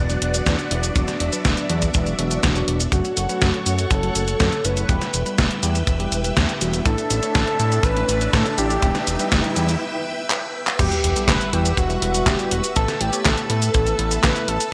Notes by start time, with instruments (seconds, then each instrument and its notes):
Already playing: analog synth bass E1, string machine B3 D4 F#4 D5 F#5
0.10 tine electric piano F#3 B3 D4 F#4, closed hi-hat, cabasa
0.22 analog synth bass E1, closed hi-hat
0.34 closed hi-hat, cabasa
0.46 analog synth bass E2, tine electric piano F#3 B3 D4 B4, kick, snare, closed hi-hat, cabasa
0.59 snare, closed hi-hat, cabasa
0.71 analog synth bass E1, tine electric piano F#3 B3 D4 E4, closed hi-hat
0.83 closed hi-hat, cabasa
0.96 analog synth bass E1, tine electric piano F#3 B3 D4 F#4, string machine E5, kick, closed hi-hat, cabasa
1.08 snare, closed hi-hat, cabasa
1.20 analog synth bass E1, closed hi-hat
1.32 tine electric piano F#3 B3 D4 B4, closed hi-hat, cabasa
1.45 analog synth bass E1, kick, snare, closed hi-hat, cabasa
1.57 closed hi-hat, cabasa
1.69 analog synth bass E2, tine electric piano F#3 B3 D4 F#4, closed hi-hat
1.82 kick, closed hi-hat, cabasa
1.94 analog synth bass E1, kick, closed hi-hat, cabasa
2.06 tine electric piano F#3 B3 D4 F#4, closed hi-hat, cabasa
2.19 analog synth bass E1, tine electric piano F#3 B3 D4 F#4, closed hi-hat
2.31 tine electric piano F#3 B3 D4 F#4, closed hi-hat, cabasa
2.43 analog synth bass E1, kick, snare, closed hi-hat, cabasa
2.55 tine electric piano F#3 B3 D4 F#4, closed hi-hat, cabasa
2.68 analog synth bass E1, closed hi-hat
2.80 closed hi-hat, cabasa
2.92 analog synth bass F#1, tine electric piano F#3 A3 C#4 F#4, analog synth lead F#4, string machine A4 C#5 F#5 C#6, kick, closed hi-hat, riser, cabasa
3.05 closed hi-hat, cabasa
3.17 analog synth bass F#1, closed hi-hat, cabasa
3.29 tine electric piano F#3 A3 C#4 B4, closed hi-hat, cabasa
3.42 analog synth bass F#1, kick, snare, closed hi-hat, cabasa
3.54 closed hi-hat
3.66 analog synth bass F#2, tine electric piano F#3 A3 C#4 F#4, closed hi-hat, cabasa
3.79 closed hi-hat, cabasa
3.91 analog synth bass F#1, analog synth lead A4, kick, closed hi-hat, cabasa
4.03 tine electric piano F#3 A3 C#4 F#4, closed hi-hat
4.15 analog synth bass F#1, closed hi-hat, cabasa
4.28 closed hi-hat, cabasa
4.40 analog synth bass F#2, tine electric piano F#3 A3 C#4 B4, analog synth lead A4, kick, snare, closed hi-hat, cabasa
4.52 snare, closed hi-hat, cabasa
4.64 analog synth bass F#1, tine electric piano F#3 A3 C#4 E4, analog synth lead B4, closed hi-hat, cabasa
4.77 closed hi-hat, cabasa
4.89 analog synth bass E1, tine electric piano G3 B3 E4 G4, string machine B4 E5 G5 E6, kick, closed hi-hat, cabasa
5.02 snare, closed hi-hat, cabasa
5.14 analog synth bass E1, closed hi-hat, cabasa
5.26 tine electric piano G3 B3 E4 B4, closed hi-hat, cabasa
5.38 analog synth bass E1, kick, snare, closed hi-hat, cabasa
5.51 closed hi-hat
5.63 analog synth bass E2, tine electric piano G3 B3 E4 G4, closed hi-hat, cabasa
5.75 closed hi-hat, cabasa
5.87 analog synth bass E1, kick, closed hi-hat, cabasa
6.00 tine electric piano G3 B3 E4 G4, closed hi-hat
6.12 analog synth bass E1, closed hi-hat, cabasa
6.24 closed hi-hat, cabasa
6.37 analog synth bass E2, tine electric piano G3 B3 E4 B4, kick, snare, closed hi-hat, cabasa
6.49 closed hi-hat, cabasa
6.61 analog synth bass E1, tine electric piano G3 B3 E4 F#4, closed hi-hat, cabasa
6.74 closed hi-hat, cabasa
6.86 analog synth bass A1, tine electric piano A3 D4 E4 A4, string machine D4 A5 E6, analog synth lead A4, kick, closed hi-hat, cabasa
6.98 closed hi-hat, cabasa
7.10 analog synth bass A1, closed hi-hat, cabasa
7.23 tine electric piano A3 D4 E4 C#5, closed hi-hat, cabasa
7.35 analog synth bass A1, kick, snare, closed hi-hat, cabasa
7.47 closed hi-hat
7.60 analog synth bass A2, tine electric piano A3 D4 E4 A4, closed hi-hat, cabasa
7.72 closed hi-hat, cabasa
7.83 analog synth bass A1, analog synth lead B4, kick, closed hi-hat, cabasa
7.96 tine electric piano A3 D4 E4 A4, closed hi-hat
8.09 analog synth bass A1, closed hi-hat, cabasa
8.21 closed hi-hat, cabasa
8.33 analog synth bass A2, tine electric piano A3 D4 E4 C#5, analog synth lead A4, kick, snare, closed hi-hat, cabasa
8.46 snare, closed hi-hat, cabasa
8.58 analog synth bass A1, tine electric piano A3 D4 E4 G4, analog synth lead G4, closed hi-hat, cabasa
8.70 closed hi-hat, cabasa
8.82 analog synth bass E1, tine electric piano G3 B3 E4 G4, string machine B4 E5 G5, kick, closed hi-hat, cabasa
8.95 snare, closed hi-hat, cabasa
9.07 analog synth bass E1, closed hi-hat, cabasa
9.19 tine electric piano G3 B3 E4 B4, closed hi-hat, cabasa
9.32 analog synth bass E1, kick, snare, closed hi-hat, cabasa
9.44 closed hi-hat
9.56 analog synth bass E2, tine electric piano G3 B3 E4 G4, closed hi-hat, cabasa
9.69 closed hi-hat, cabasa
10.30 clap
10.67 clap
10.79 analog synth bass E1, tine electric piano G3 B3 E4 F#4, analog synth lead G4, string machine B4 E5 F#5 E6, kick, closed hi-hat, crash, sub drop, cabasa
10.92 closed hi-hat, cabasa
11.04 analog synth bass E1, closed hi-hat
11.16 tine electric piano G3 B3 E4 A4, closed hi-hat, cabasa
11.28 analog synth bass E1, analog synth lead B4, kick, snare, clap, closed hi-hat, cabasa
11.41 closed hi-hat, cabasa
11.53 analog synth bass E2, tine electric piano G3 B3 E4 F#4, analog synth lead G4, closed hi-hat
11.66 closed hi-hat, cabasa
11.77 analog synth bass E1, analog synth lead F#4, kick, closed hi-hat, cabasa
11.90 tine electric piano G3 B3 E4 F#4, closed hi-hat, cabasa
12.02 analog synth bass E1, tine electric piano G3 B3 E4 F#4, closed hi-hat
12.14 tine electric piano G3 B3 E4 F#4, closed hi-hat, cabasa
12.26 analog synth bass E1, analog synth lead G4, kick, snare, clap, closed hi-hat, cabasa
12.39 tine electric piano G3 B3 E4 F#4, closed hi-hat, cabasa
12.51 analog synth bass E1, analog synth lead F#4, closed hi-hat
12.64 closed hi-hat, cabasa
12.76 analog synth bass A1, tine electric piano A3 B3 E4 A4, analog synth lead A4, string machine E5 A5, kick, closed hi-hat, cabasa
12.88 snare, closed hi-hat, cabasa
13.01 analog synth bass A1, analog synth lead G4, closed hi-hat
13.13 tine electric piano A3 B3 E4 C#5, closed hi-hat, cabasa
13.25 analog synth bass A1, analog synth lead A4, kick, snare, clap, closed hi-hat, cabasa
13.37 closed hi-hat, cabasa
13.50 analog synth bass A2, tine electric piano A3 B3 E4 A4, closed hi-hat
13.62 closed hi-hat, cabasa
13.74 analog synth bass A1, kick, closed hi-hat, cabasa
13.87 tine electric piano A3 B3 E4 A4, closed hi-hat, cabasa
13.99 analog synth bass A1, tine electric piano A3 B3 E4 A4, closed hi-hat
14.11 tine electric piano A3 B3 E4 A4, closed hi-hat, cabasa
14.23 analog synth bass A1, analog synth lead B4, kick, snare, clap, closed hi-hat, cabasa
14.36 tine electric piano A3 B3 E4 A4, closed hi-hat, cabasa
14.48 analog synth bass A1, analog synth lead A4, closed hi-hat
14.60 closed hi-hat, cabasa